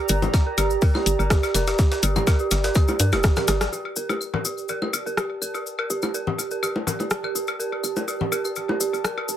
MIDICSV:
0, 0, Header, 1, 5, 480
1, 0, Start_track
1, 0, Key_signature, -2, "minor"
1, 0, Tempo, 483871
1, 1774, Time_signature, 4, 2, 24, 8
1, 9294, End_track
2, 0, Start_track
2, 0, Title_t, "Ambient pad"
2, 0, Program_c, 0, 92
2, 0, Note_on_c, 0, 67, 74
2, 0, Note_on_c, 0, 74, 79
2, 0, Note_on_c, 0, 82, 76
2, 3680, Note_off_c, 0, 67, 0
2, 3691, Note_off_c, 0, 74, 0
2, 3692, Note_on_c, 0, 67, 80
2, 3719, Note_off_c, 0, 82, 0
2, 3939, Note_on_c, 0, 74, 67
2, 4547, Note_on_c, 0, 81, 80
2, 9294, Note_off_c, 0, 67, 0
2, 9294, Note_off_c, 0, 74, 0
2, 9294, Note_off_c, 0, 81, 0
2, 9294, End_track
3, 0, Start_track
3, 0, Title_t, "Synth bell"
3, 0, Program_c, 1, 98
3, 92, Note_on_c, 1, 70, 74
3, 145, Note_off_c, 1, 70, 0
3, 221, Note_on_c, 1, 67, 76
3, 266, Note_off_c, 1, 67, 0
3, 461, Note_on_c, 1, 70, 75
3, 507, Note_off_c, 1, 70, 0
3, 573, Note_on_c, 1, 67, 73
3, 625, Note_off_c, 1, 67, 0
3, 813, Note_on_c, 1, 70, 81
3, 865, Note_off_c, 1, 70, 0
3, 941, Note_on_c, 1, 67, 76
3, 987, Note_off_c, 1, 67, 0
3, 1182, Note_on_c, 1, 70, 76
3, 1227, Note_off_c, 1, 70, 0
3, 1293, Note_on_c, 1, 67, 79
3, 1345, Note_off_c, 1, 67, 0
3, 1534, Note_on_c, 1, 70, 76
3, 1586, Note_off_c, 1, 70, 0
3, 1661, Note_on_c, 1, 67, 76
3, 1706, Note_off_c, 1, 67, 0
3, 1902, Note_on_c, 1, 70, 75
3, 1947, Note_off_c, 1, 70, 0
3, 2013, Note_on_c, 1, 67, 74
3, 2065, Note_off_c, 1, 67, 0
3, 2254, Note_on_c, 1, 70, 79
3, 2305, Note_off_c, 1, 70, 0
3, 2382, Note_on_c, 1, 67, 75
3, 2427, Note_off_c, 1, 67, 0
3, 2621, Note_on_c, 1, 70, 75
3, 2666, Note_off_c, 1, 70, 0
3, 2733, Note_on_c, 1, 67, 82
3, 2785, Note_off_c, 1, 67, 0
3, 2973, Note_on_c, 1, 70, 75
3, 3025, Note_off_c, 1, 70, 0
3, 3101, Note_on_c, 1, 67, 76
3, 3147, Note_off_c, 1, 67, 0
3, 3342, Note_on_c, 1, 70, 76
3, 3387, Note_off_c, 1, 70, 0
3, 3454, Note_on_c, 1, 67, 76
3, 3505, Note_off_c, 1, 67, 0
3, 3694, Note_on_c, 1, 67, 75
3, 3746, Note_off_c, 1, 67, 0
3, 3934, Note_on_c, 1, 70, 68
3, 3985, Note_off_c, 1, 70, 0
3, 4062, Note_on_c, 1, 67, 69
3, 4107, Note_off_c, 1, 67, 0
3, 4302, Note_on_c, 1, 70, 67
3, 4347, Note_off_c, 1, 70, 0
3, 4414, Note_on_c, 1, 67, 66
3, 4466, Note_off_c, 1, 67, 0
3, 4655, Note_on_c, 1, 70, 74
3, 4706, Note_off_c, 1, 70, 0
3, 4782, Note_on_c, 1, 67, 68
3, 4827, Note_off_c, 1, 67, 0
3, 5023, Note_on_c, 1, 70, 69
3, 5068, Note_off_c, 1, 70, 0
3, 5135, Note_on_c, 1, 67, 73
3, 5186, Note_off_c, 1, 67, 0
3, 5374, Note_on_c, 1, 70, 69
3, 5426, Note_off_c, 1, 70, 0
3, 5504, Note_on_c, 1, 67, 69
3, 5548, Note_off_c, 1, 67, 0
3, 5743, Note_on_c, 1, 70, 68
3, 5787, Note_off_c, 1, 70, 0
3, 5854, Note_on_c, 1, 67, 69
3, 5906, Note_off_c, 1, 67, 0
3, 6095, Note_on_c, 1, 70, 76
3, 6146, Note_off_c, 1, 70, 0
3, 6223, Note_on_c, 1, 67, 70
3, 6267, Note_off_c, 1, 67, 0
3, 6462, Note_on_c, 1, 70, 67
3, 6507, Note_off_c, 1, 70, 0
3, 6575, Note_on_c, 1, 67, 75
3, 6626, Note_off_c, 1, 67, 0
3, 6813, Note_on_c, 1, 70, 68
3, 6865, Note_off_c, 1, 70, 0
3, 6942, Note_on_c, 1, 67, 70
3, 6987, Note_off_c, 1, 67, 0
3, 7182, Note_on_c, 1, 70, 68
3, 7227, Note_off_c, 1, 70, 0
3, 7294, Note_on_c, 1, 67, 69
3, 7346, Note_off_c, 1, 67, 0
3, 7534, Note_on_c, 1, 70, 75
3, 7586, Note_off_c, 1, 70, 0
3, 7663, Note_on_c, 1, 67, 69
3, 7708, Note_off_c, 1, 67, 0
3, 7903, Note_on_c, 1, 70, 70
3, 7947, Note_off_c, 1, 70, 0
3, 8014, Note_on_c, 1, 67, 75
3, 8066, Note_off_c, 1, 67, 0
3, 8254, Note_on_c, 1, 70, 69
3, 8306, Note_off_c, 1, 70, 0
3, 8382, Note_on_c, 1, 67, 69
3, 8427, Note_off_c, 1, 67, 0
3, 8623, Note_on_c, 1, 70, 70
3, 8668, Note_off_c, 1, 70, 0
3, 8735, Note_on_c, 1, 67, 70
3, 8786, Note_off_c, 1, 67, 0
3, 8974, Note_on_c, 1, 70, 74
3, 9026, Note_off_c, 1, 70, 0
3, 9102, Note_on_c, 1, 67, 70
3, 9147, Note_off_c, 1, 67, 0
3, 9294, End_track
4, 0, Start_track
4, 0, Title_t, "FM bass"
4, 0, Program_c, 2, 39
4, 93, Note_on_c, 2, 31, 103
4, 280, Note_off_c, 2, 31, 0
4, 573, Note_on_c, 2, 31, 81
4, 760, Note_off_c, 2, 31, 0
4, 1053, Note_on_c, 2, 31, 90
4, 1151, Note_off_c, 2, 31, 0
4, 1181, Note_on_c, 2, 31, 85
4, 1361, Note_off_c, 2, 31, 0
4, 1533, Note_on_c, 2, 29, 82
4, 1720, Note_off_c, 2, 29, 0
4, 2012, Note_on_c, 2, 31, 101
4, 2200, Note_off_c, 2, 31, 0
4, 2493, Note_on_c, 2, 31, 83
4, 2680, Note_off_c, 2, 31, 0
4, 2974, Note_on_c, 2, 43, 101
4, 3102, Note_on_c, 2, 29, 97
4, 3117, Note_off_c, 2, 43, 0
4, 3281, Note_off_c, 2, 29, 0
4, 3454, Note_on_c, 2, 31, 85
4, 3641, Note_off_c, 2, 31, 0
4, 3933, Note_on_c, 2, 31, 95
4, 4120, Note_off_c, 2, 31, 0
4, 4414, Note_on_c, 2, 31, 77
4, 4601, Note_off_c, 2, 31, 0
4, 4894, Note_on_c, 2, 31, 88
4, 4992, Note_off_c, 2, 31, 0
4, 5022, Note_on_c, 2, 31, 82
4, 5201, Note_off_c, 2, 31, 0
4, 5374, Note_on_c, 2, 29, 78
4, 5561, Note_off_c, 2, 29, 0
4, 5854, Note_on_c, 2, 31, 94
4, 6041, Note_off_c, 2, 31, 0
4, 6335, Note_on_c, 2, 31, 78
4, 6521, Note_off_c, 2, 31, 0
4, 6814, Note_on_c, 2, 31, 88
4, 6912, Note_off_c, 2, 31, 0
4, 6942, Note_on_c, 2, 31, 80
4, 7121, Note_off_c, 2, 31, 0
4, 7294, Note_on_c, 2, 29, 77
4, 7481, Note_off_c, 2, 29, 0
4, 7773, Note_on_c, 2, 31, 95
4, 7960, Note_off_c, 2, 31, 0
4, 8254, Note_on_c, 2, 31, 78
4, 8441, Note_off_c, 2, 31, 0
4, 8733, Note_on_c, 2, 31, 87
4, 8831, Note_off_c, 2, 31, 0
4, 8861, Note_on_c, 2, 31, 80
4, 9041, Note_off_c, 2, 31, 0
4, 9213, Note_on_c, 2, 29, 78
4, 9294, Note_off_c, 2, 29, 0
4, 9294, End_track
5, 0, Start_track
5, 0, Title_t, "Drums"
5, 84, Note_on_c, 9, 69, 94
5, 92, Note_on_c, 9, 46, 87
5, 94, Note_on_c, 9, 42, 66
5, 183, Note_off_c, 9, 69, 0
5, 192, Note_off_c, 9, 46, 0
5, 193, Note_off_c, 9, 42, 0
5, 221, Note_on_c, 9, 61, 64
5, 221, Note_on_c, 9, 64, 86
5, 222, Note_on_c, 9, 42, 45
5, 226, Note_on_c, 9, 69, 34
5, 320, Note_off_c, 9, 61, 0
5, 320, Note_off_c, 9, 64, 0
5, 321, Note_off_c, 9, 42, 0
5, 325, Note_off_c, 9, 69, 0
5, 332, Note_on_c, 9, 75, 70
5, 332, Note_on_c, 9, 76, 41
5, 333, Note_on_c, 9, 36, 113
5, 334, Note_on_c, 9, 38, 118
5, 334, Note_on_c, 9, 42, 87
5, 335, Note_on_c, 9, 69, 43
5, 431, Note_off_c, 9, 75, 0
5, 431, Note_off_c, 9, 76, 0
5, 433, Note_off_c, 9, 36, 0
5, 433, Note_off_c, 9, 38, 0
5, 433, Note_off_c, 9, 42, 0
5, 435, Note_off_c, 9, 69, 0
5, 572, Note_on_c, 9, 69, 95
5, 573, Note_on_c, 9, 38, 43
5, 573, Note_on_c, 9, 42, 68
5, 573, Note_on_c, 9, 46, 87
5, 573, Note_on_c, 9, 76, 81
5, 672, Note_off_c, 9, 46, 0
5, 672, Note_off_c, 9, 69, 0
5, 672, Note_off_c, 9, 76, 0
5, 673, Note_off_c, 9, 38, 0
5, 673, Note_off_c, 9, 42, 0
5, 699, Note_on_c, 9, 69, 38
5, 798, Note_off_c, 9, 69, 0
5, 809, Note_on_c, 9, 69, 51
5, 813, Note_on_c, 9, 36, 112
5, 814, Note_on_c, 9, 46, 80
5, 814, Note_on_c, 9, 76, 39
5, 908, Note_off_c, 9, 69, 0
5, 912, Note_off_c, 9, 36, 0
5, 913, Note_off_c, 9, 46, 0
5, 913, Note_off_c, 9, 76, 0
5, 941, Note_on_c, 9, 38, 41
5, 942, Note_on_c, 9, 61, 76
5, 942, Note_on_c, 9, 75, 68
5, 1040, Note_off_c, 9, 38, 0
5, 1041, Note_off_c, 9, 61, 0
5, 1041, Note_off_c, 9, 75, 0
5, 1053, Note_on_c, 9, 42, 67
5, 1053, Note_on_c, 9, 46, 89
5, 1060, Note_on_c, 9, 69, 84
5, 1152, Note_off_c, 9, 42, 0
5, 1152, Note_off_c, 9, 46, 0
5, 1159, Note_off_c, 9, 69, 0
5, 1182, Note_on_c, 9, 76, 41
5, 1188, Note_on_c, 9, 69, 36
5, 1282, Note_off_c, 9, 76, 0
5, 1287, Note_off_c, 9, 69, 0
5, 1292, Note_on_c, 9, 37, 104
5, 1293, Note_on_c, 9, 36, 113
5, 1293, Note_on_c, 9, 38, 112
5, 1293, Note_on_c, 9, 42, 89
5, 1296, Note_on_c, 9, 69, 46
5, 1392, Note_off_c, 9, 36, 0
5, 1392, Note_off_c, 9, 37, 0
5, 1392, Note_off_c, 9, 38, 0
5, 1392, Note_off_c, 9, 42, 0
5, 1395, Note_off_c, 9, 69, 0
5, 1420, Note_on_c, 9, 69, 33
5, 1422, Note_on_c, 9, 38, 41
5, 1422, Note_on_c, 9, 76, 79
5, 1519, Note_off_c, 9, 69, 0
5, 1521, Note_off_c, 9, 38, 0
5, 1521, Note_off_c, 9, 76, 0
5, 1532, Note_on_c, 9, 46, 84
5, 1533, Note_on_c, 9, 38, 103
5, 1533, Note_on_c, 9, 42, 79
5, 1534, Note_on_c, 9, 75, 67
5, 1538, Note_on_c, 9, 69, 76
5, 1632, Note_off_c, 9, 38, 0
5, 1632, Note_off_c, 9, 42, 0
5, 1632, Note_off_c, 9, 46, 0
5, 1633, Note_off_c, 9, 75, 0
5, 1637, Note_off_c, 9, 69, 0
5, 1656, Note_on_c, 9, 69, 37
5, 1662, Note_on_c, 9, 38, 102
5, 1662, Note_on_c, 9, 42, 77
5, 1663, Note_on_c, 9, 76, 42
5, 1756, Note_off_c, 9, 69, 0
5, 1761, Note_off_c, 9, 38, 0
5, 1761, Note_off_c, 9, 42, 0
5, 1762, Note_off_c, 9, 76, 0
5, 1769, Note_on_c, 9, 69, 46
5, 1773, Note_on_c, 9, 36, 112
5, 1773, Note_on_c, 9, 38, 107
5, 1773, Note_on_c, 9, 42, 78
5, 1868, Note_off_c, 9, 69, 0
5, 1872, Note_off_c, 9, 36, 0
5, 1872, Note_off_c, 9, 38, 0
5, 1872, Note_off_c, 9, 42, 0
5, 1901, Note_on_c, 9, 38, 105
5, 1901, Note_on_c, 9, 42, 78
5, 1902, Note_on_c, 9, 69, 36
5, 2000, Note_off_c, 9, 38, 0
5, 2000, Note_off_c, 9, 42, 0
5, 2001, Note_off_c, 9, 69, 0
5, 2012, Note_on_c, 9, 69, 86
5, 2013, Note_on_c, 9, 42, 67
5, 2013, Note_on_c, 9, 46, 92
5, 2013, Note_on_c, 9, 76, 43
5, 2111, Note_off_c, 9, 69, 0
5, 2112, Note_off_c, 9, 42, 0
5, 2112, Note_off_c, 9, 46, 0
5, 2113, Note_off_c, 9, 76, 0
5, 2142, Note_on_c, 9, 42, 45
5, 2142, Note_on_c, 9, 69, 34
5, 2143, Note_on_c, 9, 61, 67
5, 2143, Note_on_c, 9, 64, 92
5, 2143, Note_on_c, 9, 75, 68
5, 2241, Note_off_c, 9, 42, 0
5, 2241, Note_off_c, 9, 69, 0
5, 2242, Note_off_c, 9, 61, 0
5, 2242, Note_off_c, 9, 64, 0
5, 2242, Note_off_c, 9, 75, 0
5, 2251, Note_on_c, 9, 69, 50
5, 2253, Note_on_c, 9, 36, 113
5, 2254, Note_on_c, 9, 38, 116
5, 2254, Note_on_c, 9, 42, 87
5, 2254, Note_on_c, 9, 76, 82
5, 2350, Note_off_c, 9, 69, 0
5, 2352, Note_off_c, 9, 36, 0
5, 2353, Note_off_c, 9, 38, 0
5, 2353, Note_off_c, 9, 42, 0
5, 2353, Note_off_c, 9, 76, 0
5, 2373, Note_on_c, 9, 69, 36
5, 2472, Note_off_c, 9, 69, 0
5, 2489, Note_on_c, 9, 69, 92
5, 2492, Note_on_c, 9, 46, 85
5, 2493, Note_on_c, 9, 38, 104
5, 2493, Note_on_c, 9, 42, 80
5, 2493, Note_on_c, 9, 76, 41
5, 2588, Note_off_c, 9, 69, 0
5, 2591, Note_off_c, 9, 46, 0
5, 2592, Note_off_c, 9, 38, 0
5, 2592, Note_off_c, 9, 42, 0
5, 2592, Note_off_c, 9, 76, 0
5, 2618, Note_on_c, 9, 69, 41
5, 2621, Note_on_c, 9, 38, 105
5, 2621, Note_on_c, 9, 42, 80
5, 2717, Note_off_c, 9, 69, 0
5, 2721, Note_off_c, 9, 38, 0
5, 2721, Note_off_c, 9, 42, 0
5, 2723, Note_on_c, 9, 69, 48
5, 2733, Note_on_c, 9, 36, 118
5, 2733, Note_on_c, 9, 38, 101
5, 2733, Note_on_c, 9, 42, 80
5, 2733, Note_on_c, 9, 75, 68
5, 2822, Note_off_c, 9, 69, 0
5, 2832, Note_off_c, 9, 36, 0
5, 2832, Note_off_c, 9, 38, 0
5, 2832, Note_off_c, 9, 42, 0
5, 2832, Note_off_c, 9, 75, 0
5, 2856, Note_on_c, 9, 69, 37
5, 2862, Note_on_c, 9, 61, 76
5, 2862, Note_on_c, 9, 76, 42
5, 2955, Note_off_c, 9, 69, 0
5, 2961, Note_off_c, 9, 61, 0
5, 2961, Note_off_c, 9, 76, 0
5, 2970, Note_on_c, 9, 69, 84
5, 2972, Note_on_c, 9, 46, 89
5, 2973, Note_on_c, 9, 38, 40
5, 2973, Note_on_c, 9, 42, 61
5, 3070, Note_off_c, 9, 69, 0
5, 3071, Note_off_c, 9, 46, 0
5, 3072, Note_off_c, 9, 38, 0
5, 3072, Note_off_c, 9, 42, 0
5, 3096, Note_on_c, 9, 69, 37
5, 3102, Note_on_c, 9, 38, 106
5, 3102, Note_on_c, 9, 42, 83
5, 3102, Note_on_c, 9, 61, 54
5, 3102, Note_on_c, 9, 76, 82
5, 3195, Note_off_c, 9, 69, 0
5, 3201, Note_off_c, 9, 38, 0
5, 3201, Note_off_c, 9, 42, 0
5, 3201, Note_off_c, 9, 61, 0
5, 3201, Note_off_c, 9, 76, 0
5, 3205, Note_on_c, 9, 69, 53
5, 3212, Note_on_c, 9, 37, 105
5, 3213, Note_on_c, 9, 36, 118
5, 3213, Note_on_c, 9, 38, 105
5, 3213, Note_on_c, 9, 42, 79
5, 3305, Note_off_c, 9, 69, 0
5, 3311, Note_off_c, 9, 37, 0
5, 3312, Note_off_c, 9, 36, 0
5, 3313, Note_off_c, 9, 38, 0
5, 3313, Note_off_c, 9, 42, 0
5, 3335, Note_on_c, 9, 69, 33
5, 3341, Note_on_c, 9, 37, 51
5, 3341, Note_on_c, 9, 64, 77
5, 3341, Note_on_c, 9, 75, 67
5, 3341, Note_on_c, 9, 76, 41
5, 3342, Note_on_c, 9, 38, 104
5, 3342, Note_on_c, 9, 42, 81
5, 3434, Note_off_c, 9, 69, 0
5, 3440, Note_off_c, 9, 37, 0
5, 3441, Note_off_c, 9, 38, 0
5, 3441, Note_off_c, 9, 42, 0
5, 3441, Note_off_c, 9, 64, 0
5, 3441, Note_off_c, 9, 75, 0
5, 3441, Note_off_c, 9, 76, 0
5, 3448, Note_on_c, 9, 69, 81
5, 3452, Note_on_c, 9, 37, 74
5, 3452, Note_on_c, 9, 46, 85
5, 3453, Note_on_c, 9, 38, 105
5, 3453, Note_on_c, 9, 42, 77
5, 3548, Note_off_c, 9, 69, 0
5, 3551, Note_off_c, 9, 37, 0
5, 3551, Note_off_c, 9, 46, 0
5, 3552, Note_off_c, 9, 38, 0
5, 3552, Note_off_c, 9, 42, 0
5, 3580, Note_on_c, 9, 37, 79
5, 3581, Note_on_c, 9, 38, 101
5, 3581, Note_on_c, 9, 42, 75
5, 3581, Note_on_c, 9, 69, 39
5, 3679, Note_off_c, 9, 37, 0
5, 3680, Note_off_c, 9, 69, 0
5, 3681, Note_off_c, 9, 38, 0
5, 3681, Note_off_c, 9, 42, 0
5, 3698, Note_on_c, 9, 69, 46
5, 3797, Note_off_c, 9, 69, 0
5, 3821, Note_on_c, 9, 76, 37
5, 3921, Note_off_c, 9, 76, 0
5, 3929, Note_on_c, 9, 69, 90
5, 4029, Note_off_c, 9, 69, 0
5, 4062, Note_on_c, 9, 61, 62
5, 4062, Note_on_c, 9, 76, 74
5, 4065, Note_on_c, 9, 69, 38
5, 4161, Note_off_c, 9, 61, 0
5, 4161, Note_off_c, 9, 76, 0
5, 4164, Note_off_c, 9, 69, 0
5, 4173, Note_on_c, 9, 75, 60
5, 4179, Note_on_c, 9, 69, 45
5, 4272, Note_off_c, 9, 75, 0
5, 4278, Note_off_c, 9, 69, 0
5, 4302, Note_on_c, 9, 64, 88
5, 4302, Note_on_c, 9, 76, 38
5, 4401, Note_off_c, 9, 64, 0
5, 4401, Note_off_c, 9, 76, 0
5, 4413, Note_on_c, 9, 69, 84
5, 4512, Note_off_c, 9, 69, 0
5, 4542, Note_on_c, 9, 69, 34
5, 4641, Note_off_c, 9, 69, 0
5, 4647, Note_on_c, 9, 69, 49
5, 4654, Note_on_c, 9, 76, 37
5, 4747, Note_off_c, 9, 69, 0
5, 4754, Note_off_c, 9, 76, 0
5, 4781, Note_on_c, 9, 61, 72
5, 4781, Note_on_c, 9, 75, 60
5, 4880, Note_off_c, 9, 61, 0
5, 4880, Note_off_c, 9, 75, 0
5, 4894, Note_on_c, 9, 76, 76
5, 4896, Note_on_c, 9, 69, 79
5, 4993, Note_off_c, 9, 76, 0
5, 4995, Note_off_c, 9, 69, 0
5, 5026, Note_on_c, 9, 69, 34
5, 5125, Note_off_c, 9, 69, 0
5, 5132, Note_on_c, 9, 37, 97
5, 5133, Note_on_c, 9, 76, 36
5, 5136, Note_on_c, 9, 69, 47
5, 5232, Note_off_c, 9, 37, 0
5, 5232, Note_off_c, 9, 76, 0
5, 5235, Note_off_c, 9, 69, 0
5, 5373, Note_on_c, 9, 75, 57
5, 5378, Note_on_c, 9, 69, 81
5, 5472, Note_off_c, 9, 75, 0
5, 5477, Note_off_c, 9, 69, 0
5, 5500, Note_on_c, 9, 76, 38
5, 5502, Note_on_c, 9, 69, 38
5, 5600, Note_off_c, 9, 76, 0
5, 5601, Note_off_c, 9, 69, 0
5, 5620, Note_on_c, 9, 69, 45
5, 5719, Note_off_c, 9, 69, 0
5, 5741, Note_on_c, 9, 76, 75
5, 5840, Note_off_c, 9, 76, 0
5, 5855, Note_on_c, 9, 69, 90
5, 5954, Note_off_c, 9, 69, 0
5, 5973, Note_on_c, 9, 69, 38
5, 5981, Note_on_c, 9, 61, 66
5, 5981, Note_on_c, 9, 75, 57
5, 5981, Note_on_c, 9, 76, 35
5, 6072, Note_off_c, 9, 69, 0
5, 6080, Note_off_c, 9, 61, 0
5, 6080, Note_off_c, 9, 75, 0
5, 6080, Note_off_c, 9, 76, 0
5, 6095, Note_on_c, 9, 69, 48
5, 6194, Note_off_c, 9, 69, 0
5, 6221, Note_on_c, 9, 64, 88
5, 6321, Note_off_c, 9, 64, 0
5, 6334, Note_on_c, 9, 76, 36
5, 6338, Note_on_c, 9, 69, 81
5, 6433, Note_off_c, 9, 76, 0
5, 6437, Note_off_c, 9, 69, 0
5, 6457, Note_on_c, 9, 69, 38
5, 6557, Note_off_c, 9, 69, 0
5, 6574, Note_on_c, 9, 75, 59
5, 6574, Note_on_c, 9, 76, 72
5, 6580, Note_on_c, 9, 69, 51
5, 6674, Note_off_c, 9, 75, 0
5, 6674, Note_off_c, 9, 76, 0
5, 6679, Note_off_c, 9, 69, 0
5, 6703, Note_on_c, 9, 61, 74
5, 6802, Note_off_c, 9, 61, 0
5, 6814, Note_on_c, 9, 64, 76
5, 6814, Note_on_c, 9, 76, 36
5, 6820, Note_on_c, 9, 69, 81
5, 6913, Note_off_c, 9, 64, 0
5, 6913, Note_off_c, 9, 76, 0
5, 6919, Note_off_c, 9, 69, 0
5, 6943, Note_on_c, 9, 61, 54
5, 6944, Note_on_c, 9, 69, 41
5, 7042, Note_off_c, 9, 61, 0
5, 7043, Note_off_c, 9, 69, 0
5, 7046, Note_on_c, 9, 69, 53
5, 7052, Note_on_c, 9, 37, 101
5, 7145, Note_off_c, 9, 69, 0
5, 7151, Note_off_c, 9, 37, 0
5, 7183, Note_on_c, 9, 75, 58
5, 7183, Note_on_c, 9, 76, 38
5, 7282, Note_off_c, 9, 75, 0
5, 7282, Note_off_c, 9, 76, 0
5, 7296, Note_on_c, 9, 69, 89
5, 7395, Note_off_c, 9, 69, 0
5, 7414, Note_on_c, 9, 69, 34
5, 7422, Note_on_c, 9, 76, 74
5, 7513, Note_off_c, 9, 69, 0
5, 7521, Note_off_c, 9, 76, 0
5, 7539, Note_on_c, 9, 69, 51
5, 7638, Note_off_c, 9, 69, 0
5, 7662, Note_on_c, 9, 76, 35
5, 7761, Note_off_c, 9, 76, 0
5, 7773, Note_on_c, 9, 75, 59
5, 7774, Note_on_c, 9, 69, 91
5, 7873, Note_off_c, 9, 69, 0
5, 7873, Note_off_c, 9, 75, 0
5, 7899, Note_on_c, 9, 69, 37
5, 7902, Note_on_c, 9, 61, 67
5, 7998, Note_off_c, 9, 69, 0
5, 8001, Note_off_c, 9, 61, 0
5, 8015, Note_on_c, 9, 76, 36
5, 8016, Note_on_c, 9, 69, 50
5, 8114, Note_off_c, 9, 76, 0
5, 8115, Note_off_c, 9, 69, 0
5, 8143, Note_on_c, 9, 64, 87
5, 8242, Note_off_c, 9, 64, 0
5, 8254, Note_on_c, 9, 76, 70
5, 8255, Note_on_c, 9, 69, 86
5, 8353, Note_off_c, 9, 76, 0
5, 8355, Note_off_c, 9, 69, 0
5, 8381, Note_on_c, 9, 69, 41
5, 8383, Note_on_c, 9, 75, 58
5, 8480, Note_off_c, 9, 69, 0
5, 8482, Note_off_c, 9, 75, 0
5, 8488, Note_on_c, 9, 69, 49
5, 8496, Note_on_c, 9, 76, 35
5, 8587, Note_off_c, 9, 69, 0
5, 8595, Note_off_c, 9, 76, 0
5, 8622, Note_on_c, 9, 61, 78
5, 8721, Note_off_c, 9, 61, 0
5, 8734, Note_on_c, 9, 69, 96
5, 8833, Note_off_c, 9, 69, 0
5, 8863, Note_on_c, 9, 76, 36
5, 8868, Note_on_c, 9, 69, 38
5, 8962, Note_off_c, 9, 76, 0
5, 8967, Note_off_c, 9, 69, 0
5, 8972, Note_on_c, 9, 37, 100
5, 8973, Note_on_c, 9, 69, 51
5, 8974, Note_on_c, 9, 75, 58
5, 9071, Note_off_c, 9, 37, 0
5, 9072, Note_off_c, 9, 69, 0
5, 9073, Note_off_c, 9, 75, 0
5, 9103, Note_on_c, 9, 76, 70
5, 9202, Note_off_c, 9, 76, 0
5, 9210, Note_on_c, 9, 69, 91
5, 9294, Note_off_c, 9, 69, 0
5, 9294, End_track
0, 0, End_of_file